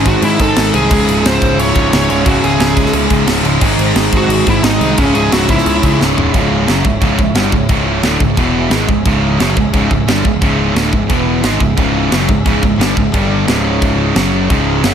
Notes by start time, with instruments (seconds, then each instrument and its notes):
Already playing: picked electric bass G#1, distorted electric guitar G#2 D#3 G#3 C4 D#4 G#4, analog synth pad C5 D#5 G#5 D#6
0.05 lead electric guitar F#4, kick, crash
0.22 picked electric bass G#2, lead electric guitar E4, crash
0.39 picked electric bass G#2, distorted electric guitar D#3 G#3, lead electric guitar A4, kick, crash
0.43 distorted electric guitar G#2
0.56 picked electric bass G#1, distorted electric guitar G#2 D#3 G#3, snare, crash
0.73 picked electric bass C2, distorted electric guitar D#3 G#3 C4 D#4 G#4, lead electric guitar G#4, crash
0.78 distorted electric guitar G#2
0.91 picked electric bass C#1, distorted electric guitar C#2 G#2 C#3 G#3 E4, analog synth pad C#4 E5 E6, kick, crash
1.08 picked electric bass C#1, crash
1.24 picked electric bass C#1, lead electric guitar C5, snare, crash
1.42 picked electric bass C#1, kick, crash
1.57 picked electric bass C#1, lead electric guitar C#5, crash
1.75 picked electric bass C#1, distorted electric guitar C#2 G#2 C#3, kick, crash
1.92 picked electric bass C#1, distorted electric guitar C#2 G#2 C#3, lead electric guitar C#5, snare, crash
2.09 picked electric bass C#1, distorted electric guitar C#2 G#2 C#3 G#3 E4, lead electric guitar C#5, crash
2.24 picked electric bass C#1, distorted electric guitar C#2 G#2 C#3 G#3, lead electric guitar F#4, kick, crash
2.28 distorted electric guitar E4
2.42 picked electric bass C#1, lead electric guitar G#4, crash
2.59 picked electric bass C#1, snare, crash
2.77 kick, crash
2.86 snare
2.93 picked electric bass C#2, crash
3.09 picked electric bass C#2, distorted electric guitar G#2 C#3, kick, crash
3.13 distorted electric guitar C#2
3.26 picked electric bass C#1, distorted electric guitar C#2 G#2 C#3, snare, crash
3.43 picked electric bass C#1, distorted electric guitar G#2 C#3 G#3 E4, crash
3.47 distorted electric guitar C#2
3.60 picked electric bass G#1, distorted electric guitar G#2 D#3 G#3 C4 D#4 G#4, analog synth pad C5 D#5 D#6, kick, crash
3.78 picked electric bass G#1, crash
3.94 picked electric bass G#1, snare, crash
4.12 picked electric bass G#1, kick, crash
4.17 lead electric guitar F#4
4.27 picked electric bass G#1, crash
4.46 picked electric bass G#1, distorted electric guitar G#2 D#3 G#3, lead electric guitar E4, kick, crash
4.62 picked electric bass G#1, distorted electric guitar G#2 D#3 G#3, lead electric guitar D#4, snare, crash
4.79 picked electric bass C2, distorted electric guitar D#3 G#3 C4 D#4 G#4, crash
4.84 distorted electric guitar G#2
4.96 picked electric bass C#1, distorted electric guitar C#2 G#2 C#3 G#3, lead electric guitar C#4, analog synth pad C#5 E5 E6, kick, crash
5.00 distorted electric guitar E4
5.14 picked electric bass C#1, lead electric guitar G#4, crash
5.31 picked electric bass C#1, lead electric guitar F#4, snare, crash
5.48 lead electric guitar E4, kick, crash
5.58 snare
5.66 picked electric bass C#2, crash
5.83 picked electric bass C#2, distorted electric guitar C#2 G#2 C#3, kick, crash
6.00 picked electric bass C#1, distorted electric guitar C#2 G#2 C#3, snare
6.16 picked electric bass C#1, distorted electric guitar C#2 G#2 C#3 G#3 E4, floor tom
6.34 picked electric bass C#1, distorted electric guitar C#2 G#2 C#3, analog synth pad G#3 E4 C#5 E5, kick, crash
6.67 picked electric bass F#1, distorted electric guitar F#2 C#3 F#3, snare, crash
6.85 picked electric bass C#1, distorted electric guitar C#2 G#2, kick
7.01 picked electric bass C#1, distorted electric guitar C#2 G#2 C#3, kick, crash
7.18 picked electric bass C#1, distorted electric guitar C#2 G#2, kick
7.35 picked electric bass G1, distorted electric guitar G2 D3 G3, snare, crash
7.52 picked electric bass C#1, distorted electric guitar C#2 G#2, kick
7.69 picked electric bass C#1, distorted electric guitar C#2 G#2 C#3, kick, crash
8.03 picked electric bass D1, distorted electric guitar D2 A2 D3, snare, crash
8.20 picked electric bass C#1, distorted electric guitar C#2 G#2, kick
8.35 picked electric bass E1, distorted electric guitar E2 B2 E3, analog synth pad E3 B3 B4 E5, kick, crash
8.70 picked electric bass G#1, distorted electric guitar G#2 D#3 G#3, analog synth pad C#4 G#4, snare, crash
8.88 picked electric bass C#1, distorted electric guitar C#2 G#2, kick
9.05 picked electric bass C#1, distorted electric guitar C#2 G#2 C#3, kick, crash
9.39 picked electric bass F#1, distorted electric guitar F#2 C#3 F#3, snare, crash
9.57 distorted electric guitar C#2 G#2, kick
9.73 picked electric bass C#1, distorted electric guitar C#2 G#2 C#3, kick, crash
9.91 picked electric bass C#1, distorted electric guitar C#2 G#2, kick
10.07 picked electric bass G1, distorted electric guitar G2 D3 G3, snare, crash
10.25 picked electric bass C#1, distorted electric guitar C#2 G#2, kick
10.41 picked electric bass C#1, distorted electric guitar C#2 G#2 C#3, kick, crash
10.75 picked electric bass D1, distorted electric guitar D2 A2 D3, snare, crash
10.93 picked electric bass C#1, distorted electric guitar C#2 G#2, kick
11.09 picked electric bass E1, distorted electric guitar E2 B2 E3, analog synth pad B3 B4, kick, crash
11.42 picked electric bass G#1, distorted electric guitar G#2 D#3 G#3, analog synth pad E3 C#4 G#4 E5, snare, crash
11.60 picked electric bass C#1, distorted electric guitar C#2 G#2, kick
11.76 picked electric bass C#1, distorted electric guitar C#2 G#2 C#3, kick, crash
12.11 picked electric bass F#1, distorted electric guitar F#2 C#3 F#3, snare, crash
12.29 picked electric bass C#1, distorted electric guitar C#2 G#2, kick
12.45 picked electric bass C#1, distorted electric guitar C#2 G#2 C#3, kick, crash
12.63 picked electric bass C#1, distorted electric guitar C#2 G#2, kick
12.78 picked electric bass G1, distorted electric guitar G2 D3 G3, snare, crash
12.97 picked electric bass C#1, distorted electric guitar C#2 G#2, kick
13.13 picked electric bass G1, distorted electric guitar G2 D3 G3, analog synth pad D3 G3 G4 D5, kick, crash
13.46 picked electric bass C#1, distorted electric guitar C#2 G#2 C#3, analog synth pad C#3 G#3 E4 C#5, snare, crash
13.82 kick, crash
14.15 picked electric bass F#1, distorted electric guitar F#2 C#3 F#3, analog synth pad C#3 F#3 F#4, snare, crash
14.50 picked electric bass C#1, distorted electric guitar C#2 G#2 C#3, analog synth pad G#3 E4, kick, crash
14.83 picked electric bass F#1, distorted electric guitar F#2 C#3 F#3, snare, crash